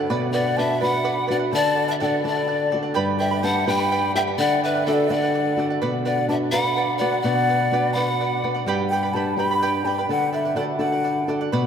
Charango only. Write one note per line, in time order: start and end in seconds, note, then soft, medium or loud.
0.10 0.33 B4 medium
0.10 0.33 D5 medium
0.10 0.34 F#5 medium
0.34 0.46 B4 medium
0.34 0.46 D5 medium
0.34 0.45 F#5 medium
0.46 0.57 D5 soft
0.46 0.58 F#5 medium
0.58 0.79 B4 medium
0.58 0.80 D5 medium
0.58 0.81 F#5 medium
0.80 0.93 B4 medium
0.80 0.93 D5 medium
0.80 0.91 F#5 medium
0.92 1.04 D5 soft
0.92 1.04 F#5 medium
1.04 1.26 B4 medium
1.04 1.27 D5 medium
1.04 1.28 F#5 medium
1.27 1.40 B4 medium
1.27 1.39 D5 medium
1.27 1.38 F#5 medium
1.39 1.51 D5 soft
1.39 1.52 F#5 medium
1.51 1.74 A4 soft
1.51 1.75 D5 medium
1.51 1.76 F#5 medium
1.76 1.88 A4 medium
1.76 1.88 D5 medium
1.76 1.87 F#5 medium
1.88 1.99 D5 soft
1.88 2.00 F#5 medium
2.00 2.23 A4 medium
2.00 2.24 D5 medium
2.00 2.24 F#5 medium
2.24 2.36 A4 medium
2.24 2.36 D5 medium
2.24 2.34 F#5 medium
2.35 2.46 D5 soft
2.35 2.48 F#5 medium
2.47 2.70 A4 medium
2.47 2.71 D5 medium
2.47 2.71 F#5 medium
2.71 2.83 A4 medium
2.71 2.83 D5 medium
2.71 2.81 F#5 medium
2.83 2.94 D5 soft
2.83 2.94 F#5 medium
2.94 3.19 G4 medium
2.94 3.18 B4 medium
2.94 3.19 D5 medium
2.94 3.17 G5 medium
2.94 3.20 B5 medium
3.19 3.31 B4 medium
3.19 3.31 D5 medium
3.19 3.31 G5 medium
3.19 3.30 B5 medium
3.31 3.42 B4 soft
3.31 3.42 D5 soft
3.31 3.43 B5 soft
3.43 3.66 B4 medium
3.43 3.66 D5 medium
3.43 3.65 G5 medium
3.43 3.67 B5 medium
3.66 3.79 B4 medium
3.66 3.79 D5 medium
3.66 3.78 G5 medium
3.66 3.79 B5 medium
3.80 3.91 B4 soft
3.80 3.91 D5 soft
3.80 3.91 B5 medium
3.92 4.15 G4 medium
3.92 4.15 B4 medium
3.92 4.15 D5 medium
3.92 4.14 G5 medium
3.92 4.15 B5 medium
4.15 4.27 B4 medium
4.15 4.27 D5 medium
4.15 4.27 G5 medium
4.15 4.26 B5 medium
4.27 4.39 B4 soft
4.27 4.39 D5 soft
4.27 4.39 B5 soft
4.39 4.62 A4 medium
4.39 4.62 D5 medium
4.39 4.63 F#5 medium
4.63 4.75 A4 medium
4.63 4.75 D5 medium
4.63 4.74 F#5 medium
4.75 4.87 D5 soft
4.75 4.86 F#5 medium
4.87 5.09 A4 medium
4.87 5.09 D5 medium
4.87 5.10 F#5 medium
5.10 5.22 A4 medium
5.10 5.22 D5 medium
5.10 5.21 F#5 medium
5.22 5.34 D5 soft
5.22 5.34 F#5 medium
5.34 5.57 A4 medium
5.34 5.58 D5 medium
5.34 5.58 F#5 medium
5.58 5.70 A4 medium
5.58 5.70 D5 medium
5.58 5.69 F#5 medium
5.70 5.81 D5 soft
5.70 5.81 F#5 medium
5.82 6.04 B4 medium
5.82 6.05 D5 medium
5.82 6.06 F#5 loud
6.06 6.17 B4 medium
6.06 6.18 D5 medium
6.06 6.16 F#5 medium
6.18 6.29 D5 soft
6.18 6.29 F#5 soft
6.29 6.51 B4 medium
6.29 6.52 D5 medium
6.29 6.53 F#5 medium
6.52 6.64 B4 medium
6.52 6.65 D5 medium
6.52 6.64 F#5 medium
6.65 6.76 D5 soft
6.65 6.77 F#5 soft
6.77 6.99 B4 medium
6.77 7.00 D5 medium
6.77 7.00 F#5 medium
7.00 7.12 B4 medium
7.00 7.13 D5 medium
7.00 7.11 F#5 medium
7.13 7.24 D5 soft
7.13 7.24 F#5 medium
7.25 7.48 B4 medium
7.25 7.48 D5 medium
7.25 7.49 F#5 medium
7.49 7.60 B4 medium
7.49 7.60 D5 medium
7.49 7.59 F#5 medium
7.60 7.72 D5 soft
7.60 7.72 F#5 medium
7.73 7.95 B4 medium
7.73 7.95 D5 medium
7.73 7.97 F#5 medium
7.96 8.08 B4 medium
7.96 8.08 D5 medium
7.96 8.07 F#5 medium
8.08 8.20 D5 soft
8.08 8.19 F#5 soft
8.21 8.42 B4 medium
8.21 8.43 D5 medium
8.21 8.43 F#5 medium
8.44 8.55 B4 medium
8.44 8.55 D5 medium
8.44 8.53 F#5 medium
8.54 8.67 D5 medium
8.54 8.67 F#5 medium
8.67 8.91 G4 medium
8.67 8.91 B4 medium
8.67 8.91 D5 medium
8.67 8.90 G5 medium
8.67 8.91 B5 medium
8.92 9.03 B4 medium
8.92 9.02 D5 medium
8.92 9.03 G5 medium
8.92 9.02 B5 medium
9.03 9.15 B4 soft
9.03 9.15 D5 soft
9.03 9.14 B5 soft
9.16 9.38 B4 medium
9.16 9.38 D5 medium
9.16 9.38 G5 medium
9.16 9.39 B5 medium
9.39 9.50 B4 medium
9.39 9.51 D5 medium
9.39 9.50 G5 medium
9.39 9.50 B5 medium
9.51 9.62 B4 soft
9.51 9.62 D5 soft
9.51 9.62 B5 medium
9.62 9.86 G4 medium
9.62 9.86 B4 medium
9.62 9.86 D5 medium
9.62 9.85 G5 medium
9.62 9.86 B5 medium
9.86 9.98 B4 medium
9.86 9.98 D5 medium
9.86 9.98 G5 medium
9.86 9.97 B5 medium
9.98 10.10 B4 soft
9.98 10.10 D5 medium
9.98 10.10 B5 soft
10.10 10.31 A4 medium
10.10 10.32 D5 medium
10.10 10.33 F#5 medium
10.33 10.45 A4 medium
10.33 10.45 D5 medium
10.33 10.44 F#5 medium
10.45 10.56 D5 soft
10.45 10.55 F#5 medium
10.56 10.78 A4 medium
10.56 10.79 D5 medium
10.56 10.79 F#5 medium
10.79 10.92 A4 medium
10.79 10.92 D5 medium
10.79 10.91 F#5 medium
10.92 11.03 D5 soft
10.92 11.04 F#5 medium
11.04 11.27 A4 soft
11.04 11.28 D5 medium
11.04 11.28 F#5 medium
11.28 11.40 A4 medium
11.28 11.40 D5 medium
11.28 11.40 F#5 medium
11.41 11.52 D5 soft
11.41 11.52 F#5 medium
11.52 11.67 B4 medium
11.52 11.67 D5 medium
11.52 11.67 F#5 medium